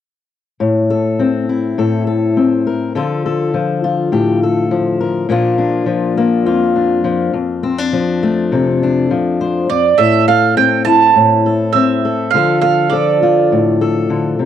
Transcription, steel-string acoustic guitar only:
0.60 1.77 A2 medium
0.90 1.78 A4 soft
1.19 2.36 C4 soft
1.49 2.92 E4 soft
1.78 2.92 A2 medium
1.78 2.06 A4 soft
2.07 2.66 A4 soft
2.37 2.92 C4 soft
2.67 2.92 A#4 soft
2.95 5.26 D3 medium
2.95 3.53 F3 soft
2.95 3.83 F4 soft
2.95 3.24 A4 medium
3.26 4.12 A4 medium
3.54 4.71 F3 soft
3.84 5.31 F4 soft
4.12 5.26 A2 medium
4.12 4.42 G4 soft
4.43 5.00 A4 soft
4.71 5.29 F3 soft
5.00 5.26 A#4 soft
5.29 6.47 A#2 medium
5.29 5.86 F3 soft
5.29 6.16 A#3 medium
5.29 5.58 D4 medium
5.29 6.46 F4 medium
5.58 6.74 D4 soft
5.86 7.03 F3 medium
6.17 7.31 A#3 medium
6.46 7.32 F2 medium
6.46 8.52 F4 soft
6.76 7.31 D4 soft
7.04 7.31 F3 medium
7.33 9.68 F2 medium
7.63 7.78 C4 medium
7.78 8.81 D4 soft
7.93 9.09 F3 medium
8.23 9.66 A3 soft
8.52 9.11 C3 medium
8.52 9.40 A4 soft
8.83 9.67 D4 medium
9.11 9.66 F3 soft
9.41 9.66 C5 medium
9.70 9.97 F2 medium
9.98 11.15 A2 medium
9.98 10.28 A4 medium
10.28 10.57 A4 medium
10.57 11.74 C4 soft
10.57 11.45 A4 soft
10.87 12.30 E4 soft
11.16 12.30 A2 soft
11.46 12.04 A4 soft
11.75 12.30 C4 medium
12.05 12.31 A4 soft
12.34 14.08 D3 medium
12.34 12.92 F3 soft
12.34 13.22 F4 soft
12.34 12.62 A4 medium
12.63 12.91 A4 medium
12.92 14.45 F3 soft
12.92 13.80 A4 medium
13.22 14.45 F4 soft
13.52 14.45 A2 medium
13.81 14.45 A4 soft
14.10 14.39 D3 soft
14.39 14.45 C3 soft

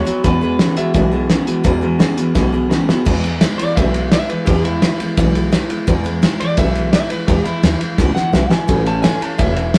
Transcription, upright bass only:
0.08 muted upright bass stroke medium
0.25 0.62 E2 loud
0.77 muted upright bass stroke medium
0.95 1.32 B1 medium
1.48 muted upright bass stroke medium
1.65 2.02 E2 loud
2.18 muted upright bass stroke medium
2.36 2.73 B1 medium
2.89 muted upright bass stroke medium
3.07 3.44 E2 loud
3.60 muted upright bass stroke medium
3.78 4.14 B1 medium
4.30 muted upright bass stroke medium
4.48 4.84 E2 loud
5.00 muted upright bass stroke medium
5.18 5.54 B1 medium
5.71 muted upright bass stroke medium
5.88 6.25 E2 loud
6.40 muted upright bass stroke medium
6.58 6.95 B1 medium
7.10 muted upright bass stroke medium
7.28 7.40 E2 loud
7.45 muted upright bass stroke medium
7.63 7.78 D#2 medium
7.81 muted upright bass stroke medium
7.99 8.13 C#2 medium
8.33 8.48 B1 medium
8.50 muted upright bass stroke medium
8.69 9.06 A1 loud
9.21 muted upright bass stroke medium
9.39 9.76 E1 medium

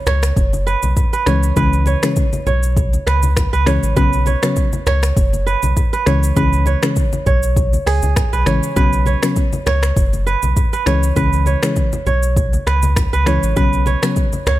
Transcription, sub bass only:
0.07 0.32 C#2 medium
0.36 0.76 F#1 loud
0.83 0.95 B1 loud
1.27 1.52 C#2 loud
1.57 1.96 C#2 loud
2.47 2.98 B1 medium
3.07 3.46 C#2 medium
3.53 3.79 C#2 medium
3.83 3.95 A1 medium
3.97 4.36 B1 loud
4.87 5.12 C#2 medium
5.17 5.56 F#1 loud
5.63 5.75 B1 medium
6.07 6.32 C#2 loud
6.37 6.76 C#2 loud
7.26 7.78 B1 loud
7.86 8.01 C#2 loud
8.03 8.15 C#2 medium
8.33 8.45 B1 medium
8.47 8.61 A1 loud
8.76 9.16 B1 loud
9.67 9.92 C#2 medium
9.96 10.36 F#1 loud
10.43 10.55 B1 loud
10.86 11.12 C#2 loud
11.16 11.56 C#2 medium
12.07 12.58 B1 medium
12.67 13.06 C#2 medium
13.13 13.39 C#2 medium
13.43 13.55 A1 medium
13.57 13.96 B1 loud
14.47 14.59 C#2 medium

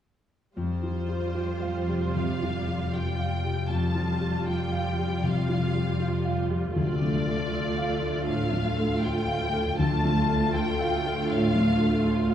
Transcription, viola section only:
0.56 3.66 G3 soft
0.56 3.66 F4 soft
3.71 6.74 G3 soft
3.71 6.74 F4 soft
6.77 9.78 A3 soft
6.77 9.75 F4 soft
9.79 12.34 A3 soft
9.79 12.34 F4 soft

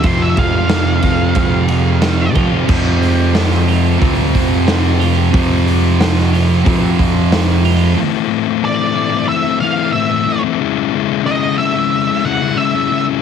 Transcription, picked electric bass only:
0.04 0.34 F2 medium
0.38 1.00 F2 loud
1.03 1.33 F2 medium
1.36 2.36 F2 medium
2.36 2.51 F3 medium
2.69 3.97 F2 medium
4.02 4.31 D2 medium
4.34 5.29 F2 medium
5.34 6.62 F2 loud
6.66 6.96 F2 medium
6.99 7.94 F2 medium

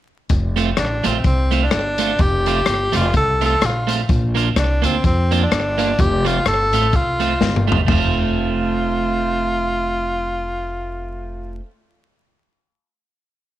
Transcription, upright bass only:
0.30 0.70 F1 loud
0.78 1.01 A1 loud
1.05 1.22 A#1 medium
1.25 1.65 C2 medium
1.72 2.12 G1 medium
2.19 2.60 F1 loud
2.67 2.90 G1 medium
2.93 3.11 F1 medium
3.14 3.55 C2 loud
3.62 4.02 A#1 medium
4.09 4.49 A#1 loud
4.56 4.79 C2 medium
4.83 5.00 D2 medium
5.04 5.44 F2 medium
5.51 5.92 G1 medium
5.99 6.39 F1 loud
6.46 6.73 G1 medium
6.73 6.90 A1 medium
6.94 7.34 C2 medium
7.41 7.81 G1 loud
7.89 11.58 F1 medium

